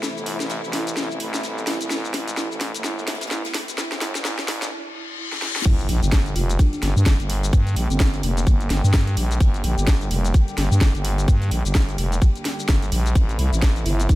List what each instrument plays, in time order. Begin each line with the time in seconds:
Already playing: string section C3 E3 A3 E4, riser
0.03 snare, closed hi-hat, ride, shaker
0.17 fm bass G1, ride, shaker
0.26 snare, open hi-hat, ride
0.40 fm bass A1, snare, closed hi-hat, ride, shaker
0.49 snare, closed hi-hat, ride, shaker
0.64 fm bass A1, snare, shaker
0.73 marimba E4, snare, open hi-hat, ride
0.87 closed hi-hat, ride, shaker
0.97 fm bass A1, snare, closed hi-hat, ride, shaker
1.10 fm bass A1, shaker
1.20 fm bass A1, snare, open hi-hat, ride
1.33 snare, closed hi-hat, shaker
1.43 fm bass A1, snare, closed hi-hat, ride, shaker
1.58 ride, shaker
1.67 marimba E4, snare, open hi-hat, ride
1.81 fm bass C2, closed hi-hat, ride, shaker
1.90 fm bass A1, marimba E4, snare, closed hi-hat, ride, shaker
2.05 shaker
2.13 fm bass A1, snare, open hi-hat, ride
2.28 closed hi-hat, ride, shaker
2.37 marimba E4, snare, closed hi-hat, ride, shaker
2.51 fm bass A1, ride, shaker
2.61 snare, open hi-hat, ride
2.74 fm bass G1, closed hi-hat, shaker
2.84 marimba E4, snare, closed hi-hat, ride, shaker
2.99 shaker
3.07 snare, open hi-hat, ride
3.14 snare, ride
3.21 fm bass A1, snare, closed hi-hat, ride, shaker
3.27 snare, ride
3.31 marimba E4, snare, closed hi-hat, ride, shaker
3.44 snare, ride, shaker
3.54 snare, open hi-hat
3.68 closed hi-hat, ride, shaker
3.78 marimba E4, snare, closed hi-hat, ride, shaker
3.92 fm bass G1, snare, ride, shaker
4.01 marimba E4, snare, open hi-hat, ride
4.15 fm bass A1, snare, closed hi-hat, ride, shaker
4.25 marimba E4, snare, closed hi-hat, ride, shaker
4.39 fm bass A1, snare, shaker
4.48 marimba E4, snare, open hi-hat, ride
4.62 snare, closed hi-hat, ride, shaker
4.72 marimba E4, reverse cymbal
4.95 marimba E4
5.19 marimba E4
5.32 snare
5.42 marimba E4, snare
5.56 snare
5.65 fm bass G1, string section D3 G3 A#3 G4, kick, closed hi-hat, crash, ride, impact, shaker
5.79 closed hi-hat, shaker
5.89 fm bass A#1, open hi-hat, ride
6.03 fm bass G1, closed hi-hat, ride, shaker
6.12 kick, snare, closed hi-hat, ride, shaker
6.26 closed hi-hat, ride, shaker
6.36 fm bass F1, marimba F4, open hi-hat, ride
6.50 closed hi-hat, shaker
6.59 marimba D4, kick, closed hi-hat, ride, shaker
6.73 marimba D4, closed hi-hat, shaker
6.83 fm bass G1, snare, open hi-hat, ride
6.96 fm bass G2, shaker
7.06 fm bass G1, kick, snare, closed hi-hat, ride, shaker
7.20 fm bass G1, closed hi-hat, shaker
7.30 open hi-hat, ride
7.43 closed hi-hat, shaker
7.53 fm bass G2, kick, closed hi-hat, ride, shaker
7.67 closed hi-hat, ride, shaker
7.76 fm bass A#1, snare, open hi-hat, ride
7.90 fm bass G1, marimba C4, closed hi-hat, ride, shaker
7.99 kick, snare, closed hi-hat, ride, shaker
8.13 snare, closed hi-hat, shaker
8.23 fm bass F1, marimba A#3, open hi-hat, ride
8.37 marimba A#3, closed hi-hat, ride, shaker
8.47 fm bass G1, kick, closed hi-hat, ride, shaker
8.61 closed hi-hat, shaker
8.70 fm bass G1, snare, open hi-hat, ride
8.84 fm bass G2, snare, shaker
8.93 fm bass G2, kick, snare, closed hi-hat, ride, shaker
9.07 closed hi-hat, ride, shaker
9.17 fm bass A#1, open hi-hat, ride
9.31 closed hi-hat, ride, shaker
9.40 fm bass G1, kick, closed hi-hat, ride, shaker
9.54 closed hi-hat, shaker
9.64 fm bass A#1, open hi-hat, ride
9.78 fm bass G1, closed hi-hat, ride, shaker
9.87 kick, snare, closed hi-hat, shaker
10.01 closed hi-hat, ride, shaker
10.10 fm bass F1, open hi-hat, ride
10.25 closed hi-hat, shaker
10.34 kick, closed hi-hat, ride, shaker
10.48 closed hi-hat, shaker
10.58 fm bass G1, snare, open hi-hat, ride
10.71 fm bass G2, shaker
10.81 fm bass G1, kick, snare, closed hi-hat, ride, shaker
10.95 fm bass G1, closed hi-hat, shaker
11.04 open hi-hat, ride
11.18 closed hi-hat, shaker
11.28 fm bass G2, kick, closed hi-hat, ride, shaker
11.41 closed hi-hat, ride, shaker
11.51 fm bass A#1, snare, open hi-hat, ride
11.65 fm bass G1, closed hi-hat, ride, shaker
11.74 kick, snare, closed hi-hat, ride, shaker
11.89 snare, closed hi-hat, shaker
11.98 fm bass F1, open hi-hat, ride
12.12 closed hi-hat, ride, shaker
12.22 kick, closed hi-hat, ride, shaker
12.36 closed hi-hat, shaker
12.45 snare, open hi-hat, ride
12.59 snare, shaker
12.68 fm bass G1, kick, snare, closed hi-hat, shaker
12.82 closed hi-hat, ride, shaker
12.92 fm bass A#1, open hi-hat, ride
13.06 closed hi-hat, ride, shaker
13.15 fm bass A1, string section C3 E3 A3 E4, kick, closed hi-hat, ride, shaker
13.29 closed hi-hat, shaker
13.39 fm bass C2, open hi-hat, ride
13.53 fm bass A1, closed hi-hat, ride, shaker
13.62 kick, snare, closed hi-hat, ride, shaker
13.76 closed hi-hat, ride, shaker
13.86 fm bass G1, marimba E4, open hi-hat, ride
14.00 closed hi-hat, shaker
14.09 marimba D4, kick, closed hi-hat, ride, shaker